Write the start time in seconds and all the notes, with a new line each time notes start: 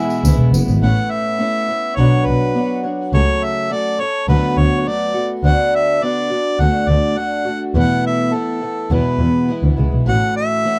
Already playing: B2 G#3 B3 E4 E5 G#5
0.00 E3
0.10 tambourine
0.24 D2 E3 G#3 B3, tambourine
0.28 E4
0.38 E1
0.52 F#1, tambourine
0.68 G#1, tambourine
0.82 A1 A2 A3 B3 C#4 E4 F#5
1.11 E5
1.39 A3 B3 C#4 E4
1.68 B3 C#4 E4
1.96 B1 B2 F#3 B3 D4 F#4 C#5
2.26 B1 B4
2.55 B3 D4 F#4 C#5
2.83 B3 D4 F#4 C#5
3.13 C#2 C#3 F#3 A3 C#4 A4 C#5
3.44 E5
3.70 F#3 A3 C#4 A4 D5
3.99 A3 C#4 A4 C#5
4.28 D2 D3 F#3 A3 B3 F#4 B4
4.57 D2 C#5
4.80 C#5
4.86 F#3 A3 B3 F#4 D5
5.14 A3 B3 F#4
5.43 D2 D3 B3 D4 F#4 F#5
5.75 E5
6.01 D3 B3 D4 F#4 D5
6.30 B3 D4 F#4
6.59 D2 D3 A3 D4 F#4 F#5
6.88 D2 D5
7.16 D3 A3 D4 F#4 F#5
7.45 A3 D4 F#4
7.74 E2 B2 E3 A3 B3 E4 F#5
8.07 E5
8.32 E3 A3 B3 E4 A4
8.61 E3 A3 B3 E4
8.90 E2 B2 E3 G#3 B3 E4 B4
9.19 E2
9.48 E3 G#3 B3 E4
9.63 D2
9.77 C#2 E3 G#3 B3 E4
9.92 B1
10.06 A1 A2 E3 A3 C#4 F#4 F#5
10.37 E5
10.64 E3 A3 C#4 F#4